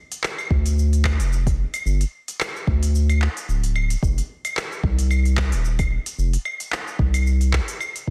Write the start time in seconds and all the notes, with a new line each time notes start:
0.12 open hi-hat, shaker
0.24 clap, shaker
0.38 claves, shaker
0.51 D2, kick
0.66 open hi-hat, shaker
0.79 shaker
0.93 open hi-hat, shaker
1.05 kick, clap, claves
1.19 F1, open hi-hat, shaker
1.33 shaker
1.47 kick, open hi-hat, shaker
1.74 open hi-hat, claves, shaker
1.86 G1, shaker
2.01 open hi-hat, shaker
2.28 open hi-hat, shaker
2.40 clap, claves, shaker
2.56 shaker
2.67 D2, kick
2.83 open hi-hat, shaker
2.95 shaker
3.09 open hi-hat, claves, shaker
3.22 clap
3.37 open hi-hat, shaker
3.49 D1, shaker
3.64 open hi-hat, shaker
3.76 claves
3.90 open hi-hat, shaker
4.03 F1, kick, shaker
4.18 open hi-hat, shaker
4.45 open hi-hat, claves, shaker
4.57 clap, shaker
4.72 shaker
4.83 C2, kick
4.99 open hi-hat, shaker
5.11 claves, shaker
5.25 open hi-hat, shaker
5.37 kick, clap
5.52 D#1, open hi-hat, shaker
5.65 shaker
5.79 kick, open hi-hat, claves, shaker
6.06 open hi-hat, shaker
6.18 F1, shaker
6.33 open hi-hat, shaker
6.45 claves
6.60 open hi-hat, shaker
6.72 clap, shaker
6.88 shaker
6.99 C2, kick
7.14 open hi-hat, claves, shaker
7.27 shaker
7.41 open hi-hat, shaker
7.53 kick, clap
7.68 open hi-hat, shaker
7.81 claves, shaker
7.96 open hi-hat, shaker